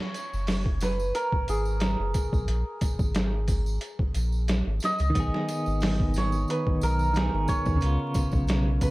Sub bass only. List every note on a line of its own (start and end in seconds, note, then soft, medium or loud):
0.33 1.12 F#1 medium
1.48 1.96 G#1 medium
1.99 2.13 F#1 medium
2.33 2.47 B1 medium
2.48 2.64 A#1 loud
2.99 3.79 G#1 medium
4.15 4.63 A#1 medium
4.66 4.80 G#1 medium
5.00 5.13 C#2 medium
5.15 5.31 B1 loud
5.67 6.46 G#1 medium
6.82 7.30 B1 medium
7.34 7.47 G#1 loud
7.67 7.80 D#2 loud
7.83 7.98 C#2 medium
8.33 8.91 B1 medium